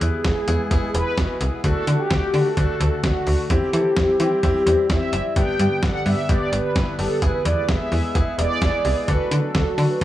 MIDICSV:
0, 0, Header, 1, 6, 480
1, 0, Start_track
1, 0, Tempo, 465116
1, 1694, Time_signature, 4, 2, 24, 8
1, 10363, End_track
2, 0, Start_track
2, 0, Title_t, "Analog polysynth"
2, 0, Program_c, 0, 90
2, 0, Note_on_c, 0, 68, 110
2, 974, Note_on_c, 0, 71, 103
2, 1009, Note_off_c, 0, 68, 0
2, 1420, Note_off_c, 0, 71, 0
2, 1694, Note_on_c, 0, 69, 105
2, 2055, Note_on_c, 0, 67, 97
2, 2065, Note_off_c, 0, 69, 0
2, 2534, Note_on_c, 0, 69, 88
2, 2549, Note_off_c, 0, 67, 0
2, 2641, Note_off_c, 0, 69, 0
2, 2654, Note_on_c, 0, 69, 108
2, 3135, Note_on_c, 0, 66, 97
2, 3148, Note_off_c, 0, 69, 0
2, 3614, Note_on_c, 0, 67, 114
2, 3629, Note_off_c, 0, 66, 0
2, 5012, Note_off_c, 0, 67, 0
2, 5054, Note_on_c, 0, 76, 106
2, 5500, Note_off_c, 0, 76, 0
2, 5535, Note_on_c, 0, 79, 118
2, 5763, Note_off_c, 0, 79, 0
2, 5775, Note_on_c, 0, 79, 109
2, 6014, Note_on_c, 0, 78, 115
2, 6021, Note_off_c, 0, 79, 0
2, 6254, Note_on_c, 0, 76, 106
2, 6261, Note_off_c, 0, 78, 0
2, 6494, Note_on_c, 0, 74, 109
2, 6501, Note_off_c, 0, 76, 0
2, 6732, Note_on_c, 0, 71, 110
2, 6741, Note_off_c, 0, 74, 0
2, 7212, Note_on_c, 0, 69, 92
2, 7227, Note_off_c, 0, 71, 0
2, 7451, Note_on_c, 0, 71, 108
2, 7460, Note_off_c, 0, 69, 0
2, 7560, Note_off_c, 0, 71, 0
2, 7572, Note_on_c, 0, 71, 93
2, 7684, Note_off_c, 0, 71, 0
2, 7692, Note_on_c, 0, 74, 101
2, 7930, Note_on_c, 0, 76, 110
2, 7940, Note_off_c, 0, 74, 0
2, 8651, Note_on_c, 0, 74, 116
2, 8673, Note_off_c, 0, 76, 0
2, 9371, Note_on_c, 0, 71, 106
2, 9394, Note_off_c, 0, 74, 0
2, 9732, Note_on_c, 0, 69, 96
2, 9743, Note_off_c, 0, 71, 0
2, 10211, Note_on_c, 0, 71, 97
2, 10227, Note_off_c, 0, 69, 0
2, 10363, Note_off_c, 0, 71, 0
2, 10363, End_track
3, 0, Start_track
3, 0, Title_t, "Grand piano"
3, 0, Program_c, 1, 0
3, 12, Note_on_c, 1, 59, 75
3, 13, Note_on_c, 1, 64, 70
3, 13, Note_on_c, 1, 71, 85
3, 196, Note_off_c, 1, 59, 0
3, 196, Note_off_c, 1, 64, 0
3, 196, Note_off_c, 1, 71, 0
3, 252, Note_on_c, 1, 59, 74
3, 252, Note_on_c, 1, 64, 66
3, 252, Note_on_c, 1, 68, 83
3, 436, Note_off_c, 1, 59, 0
3, 436, Note_off_c, 1, 64, 0
3, 436, Note_off_c, 1, 68, 0
3, 492, Note_on_c, 1, 59, 85
3, 492, Note_on_c, 1, 64, 80
3, 492, Note_on_c, 1, 68, 99
3, 676, Note_off_c, 1, 59, 0
3, 676, Note_off_c, 1, 64, 0
3, 676, Note_off_c, 1, 68, 0
3, 731, Note_on_c, 1, 59, 113
3, 731, Note_on_c, 1, 64, 103
3, 731, Note_on_c, 1, 68, 122
3, 915, Note_off_c, 1, 59, 0
3, 915, Note_off_c, 1, 64, 0
3, 915, Note_off_c, 1, 68, 0
3, 972, Note_on_c, 1, 64, 68
3, 973, Note_on_c, 1, 59, 73
3, 973, Note_on_c, 1, 68, 79
3, 1156, Note_off_c, 1, 59, 0
3, 1156, Note_off_c, 1, 64, 0
3, 1156, Note_off_c, 1, 68, 0
3, 1211, Note_on_c, 1, 59, 74
3, 1212, Note_on_c, 1, 64, 69
3, 1212, Note_on_c, 1, 66, 82
3, 1396, Note_off_c, 1, 59, 0
3, 1396, Note_off_c, 1, 64, 0
3, 1396, Note_off_c, 1, 66, 0
3, 1451, Note_on_c, 1, 59, 74
3, 1451, Note_on_c, 1, 64, 67
3, 1451, Note_on_c, 1, 68, 79
3, 1635, Note_off_c, 1, 59, 0
3, 1636, Note_off_c, 1, 64, 0
3, 1636, Note_off_c, 1, 68, 0
3, 1692, Note_on_c, 1, 57, 97
3, 1692, Note_on_c, 1, 62, 87
3, 1692, Note_on_c, 1, 66, 107
3, 1876, Note_off_c, 1, 57, 0
3, 1876, Note_off_c, 1, 62, 0
3, 1876, Note_off_c, 1, 66, 0
3, 1932, Note_on_c, 1, 57, 73
3, 1932, Note_on_c, 1, 62, 70
3, 1932, Note_on_c, 1, 66, 85
3, 2116, Note_off_c, 1, 57, 0
3, 2116, Note_off_c, 1, 62, 0
3, 2116, Note_off_c, 1, 66, 0
3, 2171, Note_on_c, 1, 66, 81
3, 2172, Note_on_c, 1, 62, 64
3, 2356, Note_off_c, 1, 62, 0
3, 2356, Note_off_c, 1, 66, 0
3, 2411, Note_on_c, 1, 57, 73
3, 2411, Note_on_c, 1, 62, 69
3, 2411, Note_on_c, 1, 66, 86
3, 2595, Note_off_c, 1, 62, 0
3, 2596, Note_off_c, 1, 57, 0
3, 2596, Note_off_c, 1, 66, 0
3, 2651, Note_on_c, 1, 57, 97
3, 2651, Note_on_c, 1, 62, 90
3, 2651, Note_on_c, 1, 66, 106
3, 2835, Note_off_c, 1, 66, 0
3, 2836, Note_off_c, 1, 57, 0
3, 2836, Note_off_c, 1, 62, 0
3, 2891, Note_on_c, 1, 57, 74
3, 2891, Note_on_c, 1, 62, 69
3, 2891, Note_on_c, 1, 66, 82
3, 3075, Note_off_c, 1, 57, 0
3, 3075, Note_off_c, 1, 62, 0
3, 3075, Note_off_c, 1, 66, 0
3, 3131, Note_on_c, 1, 57, 79
3, 3131, Note_on_c, 1, 62, 70
3, 3131, Note_on_c, 1, 66, 82
3, 3315, Note_off_c, 1, 57, 0
3, 3315, Note_off_c, 1, 66, 0
3, 3316, Note_off_c, 1, 62, 0
3, 3372, Note_on_c, 1, 57, 73
3, 3372, Note_on_c, 1, 62, 67
3, 3372, Note_on_c, 1, 66, 78
3, 3556, Note_off_c, 1, 57, 0
3, 3556, Note_off_c, 1, 62, 0
3, 3556, Note_off_c, 1, 66, 0
3, 3612, Note_on_c, 1, 60, 97
3, 3612, Note_on_c, 1, 67, 110
3, 3613, Note_on_c, 1, 64, 85
3, 3796, Note_off_c, 1, 60, 0
3, 3796, Note_off_c, 1, 64, 0
3, 3796, Note_off_c, 1, 67, 0
3, 3854, Note_on_c, 1, 60, 75
3, 3854, Note_on_c, 1, 64, 67
3, 3854, Note_on_c, 1, 69, 85
3, 4037, Note_off_c, 1, 60, 0
3, 4037, Note_off_c, 1, 64, 0
3, 4037, Note_off_c, 1, 69, 0
3, 4093, Note_on_c, 1, 60, 74
3, 4093, Note_on_c, 1, 64, 65
3, 4093, Note_on_c, 1, 67, 82
3, 4276, Note_off_c, 1, 60, 0
3, 4276, Note_off_c, 1, 64, 0
3, 4276, Note_off_c, 1, 67, 0
3, 4333, Note_on_c, 1, 64, 83
3, 4333, Note_on_c, 1, 67, 101
3, 4334, Note_on_c, 1, 60, 87
3, 4516, Note_off_c, 1, 67, 0
3, 4517, Note_off_c, 1, 60, 0
3, 4517, Note_off_c, 1, 64, 0
3, 4573, Note_on_c, 1, 60, 116
3, 4573, Note_on_c, 1, 64, 107
3, 4573, Note_on_c, 1, 67, 124
3, 4756, Note_off_c, 1, 60, 0
3, 4756, Note_off_c, 1, 64, 0
3, 4756, Note_off_c, 1, 67, 0
3, 4813, Note_on_c, 1, 60, 86
3, 4813, Note_on_c, 1, 64, 79
3, 4813, Note_on_c, 1, 67, 96
3, 4996, Note_off_c, 1, 60, 0
3, 4996, Note_off_c, 1, 64, 0
3, 4996, Note_off_c, 1, 67, 0
3, 5054, Note_on_c, 1, 64, 69
3, 5054, Note_on_c, 1, 67, 81
3, 5055, Note_on_c, 1, 60, 75
3, 5237, Note_off_c, 1, 60, 0
3, 5237, Note_off_c, 1, 64, 0
3, 5237, Note_off_c, 1, 67, 0
3, 5294, Note_on_c, 1, 60, 72
3, 5294, Note_on_c, 1, 64, 65
3, 5295, Note_on_c, 1, 67, 82
3, 5477, Note_off_c, 1, 60, 0
3, 5477, Note_off_c, 1, 64, 0
3, 5477, Note_off_c, 1, 67, 0
3, 5534, Note_on_c, 1, 59, 99
3, 5534, Note_on_c, 1, 62, 90
3, 5534, Note_on_c, 1, 67, 107
3, 5717, Note_off_c, 1, 59, 0
3, 5717, Note_off_c, 1, 62, 0
3, 5717, Note_off_c, 1, 67, 0
3, 5773, Note_on_c, 1, 59, 75
3, 5773, Note_on_c, 1, 62, 69
3, 5773, Note_on_c, 1, 67, 85
3, 5956, Note_off_c, 1, 59, 0
3, 5956, Note_off_c, 1, 67, 0
3, 5957, Note_off_c, 1, 62, 0
3, 6013, Note_on_c, 1, 69, 78
3, 6014, Note_on_c, 1, 59, 73
3, 6014, Note_on_c, 1, 62, 66
3, 6197, Note_off_c, 1, 59, 0
3, 6197, Note_off_c, 1, 62, 0
3, 6197, Note_off_c, 1, 69, 0
3, 6253, Note_on_c, 1, 59, 75
3, 6253, Note_on_c, 1, 62, 67
3, 6253, Note_on_c, 1, 67, 82
3, 6436, Note_off_c, 1, 59, 0
3, 6436, Note_off_c, 1, 62, 0
3, 6436, Note_off_c, 1, 67, 0
3, 6492, Note_on_c, 1, 59, 99
3, 6492, Note_on_c, 1, 62, 88
3, 6492, Note_on_c, 1, 67, 104
3, 6676, Note_off_c, 1, 59, 0
3, 6676, Note_off_c, 1, 62, 0
3, 6676, Note_off_c, 1, 67, 0
3, 6733, Note_on_c, 1, 59, 74
3, 6733, Note_on_c, 1, 62, 67
3, 6733, Note_on_c, 1, 67, 79
3, 6916, Note_off_c, 1, 59, 0
3, 6916, Note_off_c, 1, 62, 0
3, 6916, Note_off_c, 1, 67, 0
3, 6972, Note_on_c, 1, 59, 77
3, 6973, Note_on_c, 1, 62, 71
3, 6973, Note_on_c, 1, 64, 81
3, 7156, Note_off_c, 1, 59, 0
3, 7156, Note_off_c, 1, 62, 0
3, 7156, Note_off_c, 1, 64, 0
3, 7213, Note_on_c, 1, 59, 74
3, 7213, Note_on_c, 1, 62, 65
3, 7213, Note_on_c, 1, 67, 82
3, 7396, Note_off_c, 1, 59, 0
3, 7396, Note_off_c, 1, 62, 0
3, 7396, Note_off_c, 1, 67, 0
3, 7452, Note_on_c, 1, 59, 95
3, 7452, Note_on_c, 1, 64, 88
3, 7452, Note_on_c, 1, 68, 106
3, 7636, Note_off_c, 1, 59, 0
3, 7636, Note_off_c, 1, 64, 0
3, 7636, Note_off_c, 1, 68, 0
3, 7692, Note_on_c, 1, 59, 79
3, 7692, Note_on_c, 1, 64, 68
3, 7692, Note_on_c, 1, 71, 85
3, 7876, Note_off_c, 1, 59, 0
3, 7876, Note_off_c, 1, 64, 0
3, 7876, Note_off_c, 1, 71, 0
3, 7932, Note_on_c, 1, 59, 73
3, 7932, Note_on_c, 1, 64, 65
3, 7932, Note_on_c, 1, 68, 80
3, 8116, Note_off_c, 1, 59, 0
3, 8116, Note_off_c, 1, 64, 0
3, 8116, Note_off_c, 1, 68, 0
3, 8172, Note_on_c, 1, 59, 73
3, 8172, Note_on_c, 1, 64, 68
3, 8172, Note_on_c, 1, 68, 82
3, 8356, Note_off_c, 1, 59, 0
3, 8356, Note_off_c, 1, 64, 0
3, 8356, Note_off_c, 1, 68, 0
3, 8411, Note_on_c, 1, 59, 94
3, 8411, Note_on_c, 1, 64, 91
3, 8411, Note_on_c, 1, 68, 107
3, 8595, Note_off_c, 1, 59, 0
3, 8595, Note_off_c, 1, 64, 0
3, 8596, Note_off_c, 1, 68, 0
3, 8651, Note_on_c, 1, 59, 76
3, 8651, Note_on_c, 1, 64, 66
3, 8651, Note_on_c, 1, 68, 82
3, 8835, Note_off_c, 1, 64, 0
3, 8835, Note_off_c, 1, 68, 0
3, 8836, Note_off_c, 1, 59, 0
3, 8892, Note_on_c, 1, 64, 71
3, 8893, Note_on_c, 1, 59, 75
3, 8893, Note_on_c, 1, 68, 83
3, 9076, Note_off_c, 1, 59, 0
3, 9076, Note_off_c, 1, 64, 0
3, 9076, Note_off_c, 1, 68, 0
3, 9132, Note_on_c, 1, 59, 73
3, 9132, Note_on_c, 1, 64, 69
3, 9133, Note_on_c, 1, 68, 83
3, 9316, Note_off_c, 1, 59, 0
3, 9316, Note_off_c, 1, 64, 0
3, 9316, Note_off_c, 1, 68, 0
3, 9374, Note_on_c, 1, 62, 97
3, 9374, Note_on_c, 1, 66, 92
3, 9374, Note_on_c, 1, 69, 112
3, 9557, Note_off_c, 1, 62, 0
3, 9557, Note_off_c, 1, 66, 0
3, 9557, Note_off_c, 1, 69, 0
3, 9614, Note_on_c, 1, 62, 77
3, 9614, Note_on_c, 1, 66, 69
3, 9614, Note_on_c, 1, 69, 85
3, 9797, Note_off_c, 1, 62, 0
3, 9797, Note_off_c, 1, 66, 0
3, 9797, Note_off_c, 1, 69, 0
3, 9853, Note_on_c, 1, 66, 69
3, 9854, Note_on_c, 1, 62, 73
3, 9854, Note_on_c, 1, 69, 79
3, 10036, Note_off_c, 1, 66, 0
3, 10037, Note_off_c, 1, 62, 0
3, 10037, Note_off_c, 1, 69, 0
3, 10093, Note_on_c, 1, 62, 73
3, 10093, Note_on_c, 1, 66, 72
3, 10093, Note_on_c, 1, 69, 82
3, 10276, Note_off_c, 1, 62, 0
3, 10277, Note_off_c, 1, 66, 0
3, 10277, Note_off_c, 1, 69, 0
3, 10363, End_track
4, 0, Start_track
4, 0, Title_t, "Analog synth pad"
4, 0, Program_c, 2, 89
4, 0, Note_on_c, 2, 52, 77
4, 0, Note_on_c, 2, 56, 69
4, 0, Note_on_c, 2, 59, 70
4, 0, Note_on_c, 2, 68, 85
4, 1672, Note_off_c, 2, 68, 0
4, 1673, Note_off_c, 2, 52, 0
4, 1673, Note_off_c, 2, 56, 0
4, 1673, Note_off_c, 2, 59, 0
4, 1692, Note_on_c, 2, 50, 80
4, 1692, Note_on_c, 2, 57, 73
4, 1692, Note_on_c, 2, 78, 86
4, 3593, Note_off_c, 2, 50, 0
4, 3593, Note_off_c, 2, 57, 0
4, 3593, Note_off_c, 2, 78, 0
4, 3612, Note_on_c, 2, 52, 77
4, 3612, Note_on_c, 2, 60, 72
4, 3613, Note_on_c, 2, 55, 72
4, 3613, Note_on_c, 2, 67, 87
4, 5513, Note_off_c, 2, 60, 0
4, 5514, Note_off_c, 2, 52, 0
4, 5533, Note_on_c, 2, 50, 75
4, 5533, Note_on_c, 2, 59, 71
4, 7415, Note_off_c, 2, 55, 0
4, 7415, Note_off_c, 2, 67, 0
4, 7434, Note_off_c, 2, 50, 0
4, 7452, Note_on_c, 2, 68, 83
4, 7453, Note_on_c, 2, 52, 77
4, 7453, Note_on_c, 2, 56, 73
4, 9335, Note_off_c, 2, 59, 0
4, 9354, Note_off_c, 2, 52, 0
4, 9354, Note_off_c, 2, 56, 0
4, 9354, Note_off_c, 2, 68, 0
4, 9372, Note_on_c, 2, 66, 86
4, 9373, Note_on_c, 2, 50, 80
4, 9373, Note_on_c, 2, 54, 72
4, 9373, Note_on_c, 2, 57, 72
4, 10363, Note_off_c, 2, 50, 0
4, 10363, Note_off_c, 2, 54, 0
4, 10363, Note_off_c, 2, 57, 0
4, 10363, Note_off_c, 2, 66, 0
4, 10363, End_track
5, 0, Start_track
5, 0, Title_t, "FM bass"
5, 0, Program_c, 3, 39
5, 12, Note_on_c, 3, 40, 99
5, 103, Note_off_c, 3, 40, 0
5, 254, Note_on_c, 3, 28, 98
5, 344, Note_off_c, 3, 28, 0
5, 493, Note_on_c, 3, 40, 97
5, 584, Note_off_c, 3, 40, 0
5, 734, Note_on_c, 3, 28, 99
5, 824, Note_off_c, 3, 28, 0
5, 973, Note_on_c, 3, 28, 102
5, 1064, Note_off_c, 3, 28, 0
5, 1213, Note_on_c, 3, 28, 102
5, 1304, Note_off_c, 3, 28, 0
5, 1453, Note_on_c, 3, 36, 95
5, 1544, Note_off_c, 3, 36, 0
5, 1693, Note_on_c, 3, 38, 106
5, 1784, Note_off_c, 3, 38, 0
5, 1933, Note_on_c, 3, 50, 98
5, 2024, Note_off_c, 3, 50, 0
5, 2175, Note_on_c, 3, 38, 106
5, 2265, Note_off_c, 3, 38, 0
5, 2413, Note_on_c, 3, 50, 100
5, 2504, Note_off_c, 3, 50, 0
5, 2654, Note_on_c, 3, 38, 108
5, 2744, Note_off_c, 3, 38, 0
5, 2893, Note_on_c, 3, 38, 106
5, 2984, Note_off_c, 3, 38, 0
5, 3133, Note_on_c, 3, 38, 105
5, 3224, Note_off_c, 3, 38, 0
5, 3373, Note_on_c, 3, 38, 89
5, 3464, Note_off_c, 3, 38, 0
5, 3612, Note_on_c, 3, 40, 111
5, 3703, Note_off_c, 3, 40, 0
5, 3853, Note_on_c, 3, 52, 99
5, 3944, Note_off_c, 3, 52, 0
5, 4094, Note_on_c, 3, 40, 108
5, 4185, Note_off_c, 3, 40, 0
5, 4333, Note_on_c, 3, 52, 99
5, 4424, Note_off_c, 3, 52, 0
5, 4575, Note_on_c, 3, 40, 107
5, 4665, Note_off_c, 3, 40, 0
5, 4813, Note_on_c, 3, 40, 102
5, 4904, Note_off_c, 3, 40, 0
5, 5054, Note_on_c, 3, 40, 101
5, 5144, Note_off_c, 3, 40, 0
5, 5291, Note_on_c, 3, 30, 98
5, 5383, Note_off_c, 3, 30, 0
5, 5534, Note_on_c, 3, 31, 107
5, 5624, Note_off_c, 3, 31, 0
5, 5773, Note_on_c, 3, 43, 107
5, 5863, Note_off_c, 3, 43, 0
5, 6015, Note_on_c, 3, 31, 105
5, 6105, Note_off_c, 3, 31, 0
5, 6252, Note_on_c, 3, 43, 102
5, 6343, Note_off_c, 3, 43, 0
5, 6494, Note_on_c, 3, 31, 104
5, 6584, Note_off_c, 3, 31, 0
5, 6731, Note_on_c, 3, 31, 94
5, 6823, Note_off_c, 3, 31, 0
5, 6973, Note_on_c, 3, 31, 104
5, 7064, Note_off_c, 3, 31, 0
5, 7211, Note_on_c, 3, 30, 93
5, 7302, Note_off_c, 3, 30, 0
5, 7453, Note_on_c, 3, 28, 102
5, 7544, Note_off_c, 3, 28, 0
5, 7691, Note_on_c, 3, 40, 106
5, 7783, Note_off_c, 3, 40, 0
5, 7934, Note_on_c, 3, 28, 97
5, 8024, Note_off_c, 3, 28, 0
5, 8171, Note_on_c, 3, 40, 97
5, 8263, Note_off_c, 3, 40, 0
5, 8413, Note_on_c, 3, 28, 103
5, 8504, Note_off_c, 3, 28, 0
5, 8651, Note_on_c, 3, 28, 103
5, 8743, Note_off_c, 3, 28, 0
5, 8892, Note_on_c, 3, 28, 107
5, 8983, Note_off_c, 3, 28, 0
5, 9131, Note_on_c, 3, 36, 92
5, 9223, Note_off_c, 3, 36, 0
5, 9373, Note_on_c, 3, 38, 107
5, 9463, Note_off_c, 3, 38, 0
5, 9611, Note_on_c, 3, 50, 110
5, 9703, Note_off_c, 3, 50, 0
5, 9855, Note_on_c, 3, 38, 100
5, 9945, Note_off_c, 3, 38, 0
5, 10092, Note_on_c, 3, 50, 104
5, 10183, Note_off_c, 3, 50, 0
5, 10363, End_track
6, 0, Start_track
6, 0, Title_t, "Drums"
6, 14, Note_on_c, 9, 42, 71
6, 117, Note_off_c, 9, 42, 0
6, 253, Note_on_c, 9, 38, 110
6, 253, Note_on_c, 9, 42, 61
6, 254, Note_on_c, 9, 36, 112
6, 356, Note_off_c, 9, 42, 0
6, 357, Note_off_c, 9, 38, 0
6, 358, Note_off_c, 9, 36, 0
6, 492, Note_on_c, 9, 42, 82
6, 595, Note_off_c, 9, 42, 0
6, 733, Note_on_c, 9, 42, 74
6, 734, Note_on_c, 9, 36, 111
6, 836, Note_off_c, 9, 42, 0
6, 837, Note_off_c, 9, 36, 0
6, 976, Note_on_c, 9, 42, 73
6, 1079, Note_off_c, 9, 42, 0
6, 1212, Note_on_c, 9, 42, 73
6, 1213, Note_on_c, 9, 36, 120
6, 1214, Note_on_c, 9, 38, 121
6, 1316, Note_off_c, 9, 36, 0
6, 1316, Note_off_c, 9, 42, 0
6, 1317, Note_off_c, 9, 38, 0
6, 1452, Note_on_c, 9, 42, 76
6, 1555, Note_off_c, 9, 42, 0
6, 1692, Note_on_c, 9, 36, 108
6, 1692, Note_on_c, 9, 42, 75
6, 1795, Note_off_c, 9, 42, 0
6, 1796, Note_off_c, 9, 36, 0
6, 1933, Note_on_c, 9, 42, 71
6, 2036, Note_off_c, 9, 42, 0
6, 2173, Note_on_c, 9, 38, 112
6, 2173, Note_on_c, 9, 42, 62
6, 2174, Note_on_c, 9, 36, 111
6, 2276, Note_off_c, 9, 38, 0
6, 2276, Note_off_c, 9, 42, 0
6, 2278, Note_off_c, 9, 36, 0
6, 2411, Note_on_c, 9, 46, 59
6, 2515, Note_off_c, 9, 46, 0
6, 2653, Note_on_c, 9, 42, 73
6, 2654, Note_on_c, 9, 36, 114
6, 2756, Note_off_c, 9, 42, 0
6, 2757, Note_off_c, 9, 36, 0
6, 2896, Note_on_c, 9, 42, 74
6, 2999, Note_off_c, 9, 42, 0
6, 3132, Note_on_c, 9, 42, 74
6, 3133, Note_on_c, 9, 36, 120
6, 3134, Note_on_c, 9, 38, 119
6, 3236, Note_off_c, 9, 36, 0
6, 3236, Note_off_c, 9, 42, 0
6, 3237, Note_off_c, 9, 38, 0
6, 3371, Note_on_c, 9, 46, 80
6, 3474, Note_off_c, 9, 46, 0
6, 3612, Note_on_c, 9, 42, 77
6, 3613, Note_on_c, 9, 36, 111
6, 3715, Note_off_c, 9, 42, 0
6, 3716, Note_off_c, 9, 36, 0
6, 3853, Note_on_c, 9, 42, 71
6, 3957, Note_off_c, 9, 42, 0
6, 4092, Note_on_c, 9, 38, 110
6, 4092, Note_on_c, 9, 42, 62
6, 4095, Note_on_c, 9, 36, 113
6, 4195, Note_off_c, 9, 42, 0
6, 4196, Note_off_c, 9, 38, 0
6, 4198, Note_off_c, 9, 36, 0
6, 4332, Note_on_c, 9, 42, 81
6, 4435, Note_off_c, 9, 42, 0
6, 4574, Note_on_c, 9, 42, 75
6, 4575, Note_on_c, 9, 36, 115
6, 4677, Note_off_c, 9, 42, 0
6, 4678, Note_off_c, 9, 36, 0
6, 4816, Note_on_c, 9, 42, 74
6, 4920, Note_off_c, 9, 42, 0
6, 5053, Note_on_c, 9, 42, 74
6, 5054, Note_on_c, 9, 36, 119
6, 5055, Note_on_c, 9, 38, 123
6, 5156, Note_off_c, 9, 42, 0
6, 5157, Note_off_c, 9, 36, 0
6, 5158, Note_off_c, 9, 38, 0
6, 5292, Note_on_c, 9, 42, 76
6, 5396, Note_off_c, 9, 42, 0
6, 5533, Note_on_c, 9, 42, 76
6, 5534, Note_on_c, 9, 36, 110
6, 5636, Note_off_c, 9, 42, 0
6, 5637, Note_off_c, 9, 36, 0
6, 5774, Note_on_c, 9, 42, 72
6, 5877, Note_off_c, 9, 42, 0
6, 6013, Note_on_c, 9, 38, 116
6, 6013, Note_on_c, 9, 42, 62
6, 6015, Note_on_c, 9, 36, 112
6, 6116, Note_off_c, 9, 38, 0
6, 6116, Note_off_c, 9, 42, 0
6, 6118, Note_off_c, 9, 36, 0
6, 6252, Note_on_c, 9, 46, 59
6, 6355, Note_off_c, 9, 46, 0
6, 6494, Note_on_c, 9, 36, 111
6, 6494, Note_on_c, 9, 42, 75
6, 6597, Note_off_c, 9, 42, 0
6, 6598, Note_off_c, 9, 36, 0
6, 6736, Note_on_c, 9, 42, 75
6, 6839, Note_off_c, 9, 42, 0
6, 6973, Note_on_c, 9, 36, 123
6, 6973, Note_on_c, 9, 42, 72
6, 6974, Note_on_c, 9, 38, 123
6, 7076, Note_off_c, 9, 36, 0
6, 7076, Note_off_c, 9, 42, 0
6, 7077, Note_off_c, 9, 38, 0
6, 7211, Note_on_c, 9, 46, 81
6, 7314, Note_off_c, 9, 46, 0
6, 7452, Note_on_c, 9, 42, 78
6, 7453, Note_on_c, 9, 36, 112
6, 7555, Note_off_c, 9, 42, 0
6, 7556, Note_off_c, 9, 36, 0
6, 7693, Note_on_c, 9, 42, 72
6, 7796, Note_off_c, 9, 42, 0
6, 7932, Note_on_c, 9, 38, 109
6, 7932, Note_on_c, 9, 42, 63
6, 7934, Note_on_c, 9, 36, 112
6, 8035, Note_off_c, 9, 38, 0
6, 8035, Note_off_c, 9, 42, 0
6, 8037, Note_off_c, 9, 36, 0
6, 8171, Note_on_c, 9, 46, 59
6, 8274, Note_off_c, 9, 46, 0
6, 8412, Note_on_c, 9, 42, 75
6, 8414, Note_on_c, 9, 36, 117
6, 8515, Note_off_c, 9, 42, 0
6, 8517, Note_off_c, 9, 36, 0
6, 8655, Note_on_c, 9, 42, 79
6, 8758, Note_off_c, 9, 42, 0
6, 8892, Note_on_c, 9, 42, 74
6, 8893, Note_on_c, 9, 36, 124
6, 8894, Note_on_c, 9, 38, 121
6, 8995, Note_off_c, 9, 42, 0
6, 8996, Note_off_c, 9, 36, 0
6, 8997, Note_off_c, 9, 38, 0
6, 9131, Note_on_c, 9, 46, 80
6, 9234, Note_off_c, 9, 46, 0
6, 9372, Note_on_c, 9, 42, 76
6, 9373, Note_on_c, 9, 36, 113
6, 9475, Note_off_c, 9, 42, 0
6, 9476, Note_off_c, 9, 36, 0
6, 9613, Note_on_c, 9, 42, 73
6, 9716, Note_off_c, 9, 42, 0
6, 9852, Note_on_c, 9, 42, 62
6, 9853, Note_on_c, 9, 38, 113
6, 9855, Note_on_c, 9, 36, 110
6, 9956, Note_off_c, 9, 38, 0
6, 9956, Note_off_c, 9, 42, 0
6, 9958, Note_off_c, 9, 36, 0
6, 10092, Note_on_c, 9, 46, 60
6, 10195, Note_off_c, 9, 46, 0
6, 10363, End_track
0, 0, End_of_file